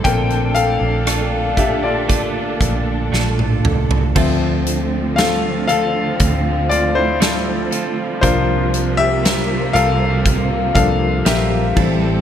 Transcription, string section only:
0, 0, Header, 1, 2, 480
1, 0, Start_track
1, 0, Key_signature, -1, "minor"
1, 0, Tempo, 1025641
1, 22, Time_signature, 4, 2, 24, 8
1, 2902, Tempo, 1011804
1, 5753, End_track
2, 0, Start_track
2, 0, Title_t, "String section"
2, 0, Program_c, 0, 48
2, 0, Note_on_c, 0, 69, 63
2, 23, Note_on_c, 0, 62, 79
2, 26, Note_on_c, 0, 46, 68
2, 1926, Note_off_c, 0, 69, 0
2, 1928, Note_off_c, 0, 62, 0
2, 1929, Note_off_c, 0, 46, 0
2, 1946, Note_on_c, 0, 50, 75
2, 1946, Note_on_c, 0, 57, 69
2, 1946, Note_on_c, 0, 60, 63
2, 1947, Note_on_c, 0, 53, 79
2, 3845, Note_off_c, 0, 50, 0
2, 3845, Note_off_c, 0, 57, 0
2, 3845, Note_off_c, 0, 60, 0
2, 3869, Note_on_c, 0, 55, 65
2, 3869, Note_on_c, 0, 58, 73
2, 3870, Note_on_c, 0, 48, 78
2, 5524, Note_off_c, 0, 53, 0
2, 5528, Note_off_c, 0, 48, 0
2, 5528, Note_off_c, 0, 58, 0
2, 5543, Note_on_c, 0, 60, 86
2, 5543, Note_on_c, 0, 69, 71
2, 5753, Note_off_c, 0, 55, 0
2, 5753, Note_off_c, 0, 60, 0
2, 5753, Note_off_c, 0, 69, 0
2, 5753, End_track
0, 0, End_of_file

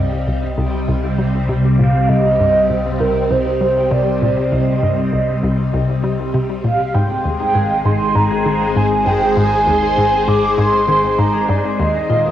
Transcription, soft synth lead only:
0, 0, Header, 1, 2, 480
1, 0, Start_track
1, 0, Key_signature, -3, "minor"
1, 0, Tempo, 606061
1, 1658, Time_signature, 4, 2, 24, 8
1, 9752, End_track
2, 0, Start_track
2, 0, Title_t, "Soft synth lead"
2, 0, Program_c, 0, 80
2, 0, Note_on_c, 0, 75, 102
2, 1145, Note_off_c, 0, 75, 0
2, 1417, Note_on_c, 0, 77, 109
2, 1655, Note_on_c, 0, 75, 116
2, 1666, Note_off_c, 0, 77, 0
2, 2376, Note_on_c, 0, 70, 95
2, 2388, Note_off_c, 0, 75, 0
2, 2623, Note_on_c, 0, 72, 105
2, 2635, Note_off_c, 0, 70, 0
2, 3099, Note_on_c, 0, 74, 105
2, 3111, Note_off_c, 0, 72, 0
2, 3579, Note_on_c, 0, 75, 104
2, 3590, Note_off_c, 0, 74, 0
2, 5018, Note_off_c, 0, 75, 0
2, 5262, Note_on_c, 0, 77, 91
2, 5499, Note_on_c, 0, 79, 106
2, 5511, Note_off_c, 0, 77, 0
2, 6221, Note_on_c, 0, 84, 100
2, 6233, Note_off_c, 0, 79, 0
2, 6458, Note_on_c, 0, 82, 108
2, 6470, Note_off_c, 0, 84, 0
2, 6944, Note_on_c, 0, 80, 98
2, 6956, Note_off_c, 0, 82, 0
2, 7183, Note_on_c, 0, 79, 97
2, 7195, Note_off_c, 0, 80, 0
2, 7417, Note_off_c, 0, 79, 0
2, 7422, Note_on_c, 0, 80, 115
2, 8143, Note_on_c, 0, 86, 109
2, 8155, Note_off_c, 0, 80, 0
2, 8386, Note_on_c, 0, 84, 116
2, 8398, Note_off_c, 0, 86, 0
2, 8861, Note_on_c, 0, 82, 103
2, 8873, Note_off_c, 0, 84, 0
2, 9100, Note_on_c, 0, 74, 92
2, 9112, Note_off_c, 0, 82, 0
2, 9339, Note_off_c, 0, 74, 0
2, 9344, Note_on_c, 0, 75, 110
2, 9752, Note_off_c, 0, 75, 0
2, 9752, End_track
0, 0, End_of_file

